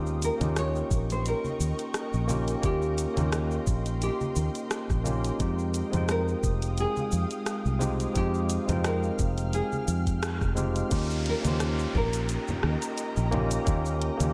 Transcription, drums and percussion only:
0.06 shaker soft
0.22 closed hi-hat soft
0.22 shaker medium
0.41 closed hi-hat soft
0.41 high conga medium
0.41 low conga medium
0.41 shaker soft
0.56 cross-stick medium
0.56 closed hi-hat medium
0.56 shaker soft
0.75 shaker soft
0.91 kick loud
0.91 shaker medium
1.10 closed hi-hat soft
1.10 shaker soft
1.26 closed hi-hat medium
1.26 shaker soft
1.45 high conga medium
1.45 shaker soft
1.60 shaker medium
1.79 closed hi-hat soft
1.79 shaker soft
1.94 cross-stick medium
1.94 closed hi-hat soft
1.94 shaker soft
2.13 shaker soft
2.29 closed hi-hat soft
2.29 high conga medium
2.29 shaker medium
2.48 closed hi-hat soft
2.48 shaker soft
2.63 kick loud
2.63 closed hi-hat medium
2.63 shaker soft
2.82 shaker soft
2.98 closed hi-hat medium
2.98 shaker medium
3.17 closed hi-hat soft
3.17 high conga medium
3.17 low conga medium
3.17 shaker soft
3.32 cross-stick loud
3.32 closed hi-hat medium
3.32 shaker soft
3.51 shaker soft
3.67 kick medium
3.67 shaker medium
3.86 closed hi-hat soft
3.86 shaker soft
4.02 closed hi-hat medium
4.02 shaker soft
4.21 high conga medium
4.21 shaker soft
4.36 shaker medium
4.55 closed hi-hat soft
4.55 shaker soft
4.71 cross-stick loud
4.71 closed hi-hat medium
4.71 shaker soft
4.90 kick medium
4.90 cross-stick soft
4.90 shaker soft
5.06 closed hi-hat soft
5.06 high conga medium
5.06 shaker medium
5.24 closed hi-hat soft
5.24 shaker soft
5.40 kick loud
5.40 closed hi-hat medium
5.40 shaker soft
5.59 shaker soft
5.74 closed hi-hat soft
5.74 shaker medium
5.93 closed hi-hat soft
5.93 high conga medium
5.93 low conga medium
5.93 shaker soft
6.09 cross-stick medium
6.09 closed hi-hat medium
6.09 shaker soft
6.28 shaker soft
6.43 kick loud
6.43 shaker medium
6.62 closed hi-hat soft
6.62 shaker soft
6.78 closed hi-hat medium
6.78 shaker soft
6.96 high conga medium
6.96 shaker soft
7.12 shaker medium
7.31 closed hi-hat soft
7.31 shaker soft
7.46 cross-stick medium
7.46 closed hi-hat medium
7.46 shaker soft
7.66 shaker soft
7.81 closed hi-hat soft
7.81 high conga medium
7.81 shaker medium
8.00 closed hi-hat soft
8.00 shaker soft
8.15 kick medium
8.15 closed hi-hat medium
8.15 shaker soft
8.34 shaker soft
8.50 closed hi-hat medium
8.50 shaker medium
8.69 closed hi-hat soft
8.69 high conga medium
8.69 low conga loud
8.69 shaker soft
8.84 cross-stick loud
8.84 closed hi-hat medium
8.84 shaker soft
9.03 shaker soft
9.19 kick loud
9.19 closed hi-hat soft
9.19 shaker medium
9.38 closed hi-hat soft
9.38 shaker soft
9.53 closed hi-hat medium
9.53 shaker soft
9.72 high conga medium
9.72 shaker soft
9.88 closed hi-hat soft
9.88 shaker medium
10.07 kick medium
10.07 closed hi-hat soft
10.07 shaker soft
10.23 cross-stick loud
10.23 closed hi-hat medium
10.23 shaker soft
10.41 kick medium
10.41 cross-stick soft
10.41 shaker soft
10.57 closed hi-hat soft
10.57 high conga medium
10.57 shaker medium
10.76 closed hi-hat soft
10.76 shaker soft
10.91 kick loud
10.91 closed hi-hat medium
10.91 shaker medium
11.10 shaker soft
11.26 closed hi-hat medium
11.45 closed hi-hat soft
11.45 high conga medium
11.45 shaker medium
11.60 cross-stick medium
11.60 closed hi-hat medium
11.60 shaker medium
11.79 shaker soft
11.95 kick loud
11.95 low conga loud
12.13 closed hi-hat soft
12.13 shaker medium
12.29 closed hi-hat medium
12.29 shaker medium
12.48 high conga medium
12.48 low conga medium
12.48 shaker soft
12.63 cross-stick medium
12.82 closed hi-hat soft
12.82 shaker medium
12.98 closed hi-hat medium
12.98 shaker medium
13.16 shaker soft
13.32 closed hi-hat soft
13.32 high conga medium
13.32 low conga medium
13.51 closed hi-hat soft
13.51 shaker medium
13.67 kick loud
13.67 closed hi-hat medium
13.67 shaker medium
13.86 shaker soft
14.02 closed hi-hat medium
14.20 closed hi-hat soft
14.20 high conga medium
14.20 shaker medium

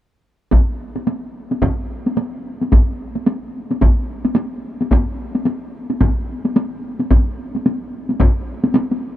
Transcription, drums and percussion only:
0.52 taiko medium
0.52 taiko high medium
0.96 taiko high soft
1.07 taiko high soft
1.51 taiko high soft
1.62 taiko medium
1.62 taiko high medium
2.06 taiko high soft
2.17 taiko high medium
2.61 taiko high soft
2.72 taiko medium
2.72 taiko high medium
3.15 taiko high soft
3.27 taiko high medium
3.71 taiko high soft
3.81 taiko medium
3.81 taiko high medium
4.25 taiko high medium
4.36 taiko high medium
4.81 taiko high soft
4.91 taiko medium
4.91 taiko high medium
5.35 taiko high soft
5.45 taiko high medium
5.90 taiko high soft
6.01 taiko medium
6.01 taiko high medium
6.45 taiko high soft
6.56 taiko high medium
6.99 taiko high soft
7.11 taiko medium
7.11 taiko high medium
7.55 taiko high soft
7.66 taiko high medium
8.09 taiko high soft
8.20 taiko medium
8.20 taiko high medium
8.64 taiko high medium
8.74 taiko high medium
8.91 taiko high soft

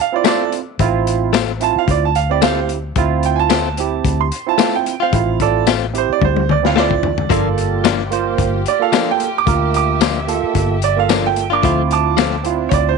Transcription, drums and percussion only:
0.25 snare loud
0.25 closed hi-hat medium
0.25 tambourine loud
0.52 closed hi-hat medium
0.79 kick loud
0.79 closed hi-hat medium
1.07 closed hi-hat medium
1.34 snare loud
1.34 closed hi-hat medium
1.34 tambourine loud
1.61 closed hi-hat medium
1.88 kick medium
1.88 closed hi-hat medium
2.15 closed hi-hat medium
2.42 snare loud
2.42 closed hi-hat medium
2.42 tambourine loud
2.69 closed hi-hat medium
2.96 kick loud
2.96 closed hi-hat medium
3.23 closed hi-hat medium
3.50 snare loud
3.50 closed hi-hat medium
3.50 tambourine loud
3.77 closed hi-hat medium
4.05 kick medium
4.05 closed hi-hat medium
4.32 closed hi-hat medium
4.59 snare loud
4.59 closed hi-hat medium
4.59 tambourine loud
4.86 closed hi-hat medium
5.13 kick loud
5.13 closed hi-hat medium
5.40 kick medium
5.40 closed hi-hat medium
5.67 snare loud
5.67 closed hi-hat medium
5.67 tambourine loud
5.95 closed hi-hat medium
6.22 kick medium
6.22 high tom medium
6.36 high tom medium
6.49 mid tom medium
6.65 snare medium
6.77 snare medium
6.91 kick medium
7.03 floor tom medium
7.18 floor tom medium
7.30 kick loud
7.30 closed hi-hat medium
7.58 closed hi-hat medium
7.85 snare loud
7.85 closed hi-hat medium
7.85 tambourine loud
8.12 closed hi-hat medium
8.38 kick medium
8.38 closed hi-hat medium
8.66 closed hi-hat medium
8.93 snare loud
8.93 closed hi-hat medium
8.93 tambourine loud
9.20 closed hi-hat medium
9.47 kick loud
9.47 closed hi-hat medium
9.74 closed hi-hat medium
10.01 snare loud
10.01 closed hi-hat medium
10.01 tambourine loud
10.28 closed hi-hat medium
10.55 kick medium
10.55 closed hi-hat medium
10.82 closed hi-hat medium
11.09 snare loud
11.09 closed hi-hat medium
11.09 tambourine loud
11.36 closed hi-hat medium
11.63 kick loud
11.63 closed hi-hat medium
11.91 closed hi-hat medium
12.18 snare loud
12.18 closed hi-hat medium
12.18 tambourine loud
12.45 closed hi-hat medium
12.71 kick medium
12.71 closed hi-hat medium

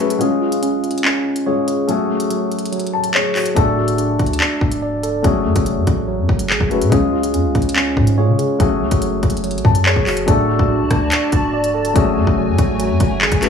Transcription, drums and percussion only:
0.10 closed hi-hat medium
0.21 closed hi-hat medium
0.52 closed hi-hat medium
0.63 closed hi-hat medium
0.84 closed hi-hat soft
0.91 closed hi-hat medium
0.98 closed hi-hat medium
1.05 clap loud
1.36 closed hi-hat medium
1.68 closed hi-hat medium
1.89 closed hi-hat medium
2.20 closed hi-hat medium
2.30 closed hi-hat medium
2.52 closed hi-hat medium
2.59 closed hi-hat medium
2.66 closed hi-hat medium
2.73 closed hi-hat medium
2.80 closed hi-hat medium
2.87 closed hi-hat medium
3.04 closed hi-hat medium
3.14 clap loud
3.36 clap medium
3.36 open hi-hat medium
3.46 closed hi-hat medium
3.56 kick loud
3.56 closed hi-hat medium
3.88 closed hi-hat medium
3.98 closed hi-hat medium
4.19 kick medium
4.19 closed hi-hat soft
4.26 closed hi-hat medium
4.33 closed hi-hat medium
4.41 clap loud
4.61 kick loud
4.72 closed hi-hat medium
5.03 closed hi-hat medium
5.24 kick loud
5.24 closed hi-hat medium
5.56 kick medium
5.56 closed hi-hat medium
5.66 closed hi-hat medium
5.87 kick medium
5.87 closed hi-hat medium
6.29 kick loud
6.39 closed hi-hat medium
6.50 clap loud
6.61 kick medium
6.71 closed hi-hat medium
6.82 closed hi-hat medium
6.92 kick loud
6.92 closed hi-hat medium
7.23 closed hi-hat medium
7.34 closed hi-hat medium
7.55 kick medium
7.55 closed hi-hat soft
7.62 closed hi-hat medium
7.69 closed hi-hat medium
7.76 clap loud
7.97 kick loud
8.07 closed hi-hat medium
8.39 closed hi-hat medium
8.60 kick loud
8.60 closed hi-hat medium
8.91 kick medium
8.91 closed hi-hat medium
9.02 closed hi-hat medium
9.23 kick medium
9.23 closed hi-hat medium
9.30 closed hi-hat medium
9.37 closed hi-hat medium
9.44 closed hi-hat medium
9.51 closed hi-hat medium
9.58 closed hi-hat medium
9.65 kick loud
9.75 closed hi-hat medium
9.86 clap loud
9.96 kick medium
10.07 clap medium
10.07 open hi-hat medium
10.17 closed hi-hat medium
10.28 kick loud
10.28 closed hi-hat medium
10.59 kick loud
10.91 kick loud
10.91 cross-stick medium
10.91 closed hi-hat medium
11.12 clap loud
11.12 closed hi-hat loud
11.32 kick loud
11.32 closed hi-hat medium
11.64 closed hi-hat medium
11.85 closed hi-hat medium
11.96 kick loud
11.96 closed hi-hat medium
12.27 kick loud
12.58 kick loud
12.58 closed hi-hat medium
12.80 closed hi-hat medium
13.00 kick loud
13.00 closed hi-hat medium
13.21 clap loud
13.32 kick medium
13.32 closed hi-hat medium
13.43 clap medium
13.43 closed hi-hat medium

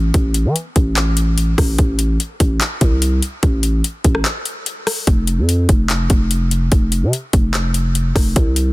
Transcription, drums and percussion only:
0.14 kick loud
0.14 closed hi-hat medium
0.34 closed hi-hat medium
0.56 closed hi-hat medium
0.76 kick medium
0.76 closed hi-hat medium
0.96 clap loud
0.96 closed hi-hat medium
1.17 closed hi-hat medium
1.38 closed hi-hat medium
1.58 kick loud
1.58 cross-stick medium
1.58 open hi-hat medium
1.78 kick loud
1.78 closed hi-hat medium
1.99 closed hi-hat medium
2.20 closed hi-hat medium
2.40 kick medium
2.40 closed hi-hat medium
2.61 clap loud
2.61 closed hi-hat medium
2.81 kick medium
2.81 closed hi-hat medium
3.02 closed hi-hat medium
3.22 closed hi-hat medium
3.43 kick loud
3.43 closed hi-hat medium
3.63 closed hi-hat medium
3.84 closed hi-hat medium
4.04 kick loud
4.04 closed hi-hat medium
4.15 cross-stick medium
4.25 clap loud
4.25 closed hi-hat medium
4.45 closed hi-hat medium
4.66 closed hi-hat medium
4.87 cross-stick medium
4.87 open hi-hat medium
5.07 kick loud
5.07 closed hi-hat medium
5.27 closed hi-hat medium
5.49 closed hi-hat medium
5.69 kick medium
5.69 closed hi-hat medium
5.90 clap loud
5.90 closed hi-hat medium
6.10 kick medium
6.10 closed hi-hat medium
6.31 closed hi-hat medium
6.51 closed hi-hat medium
6.72 kick loud
6.72 closed hi-hat medium
6.92 closed hi-hat medium
7.13 closed hi-hat medium
7.33 kick loud
7.33 closed hi-hat medium
7.54 clap loud
7.54 closed hi-hat medium
7.74 closed hi-hat medium
7.95 closed hi-hat medium
8.16 kick loud
8.16 cross-stick medium
8.16 open hi-hat medium
8.36 kick loud
8.36 closed hi-hat medium
8.56 closed hi-hat medium

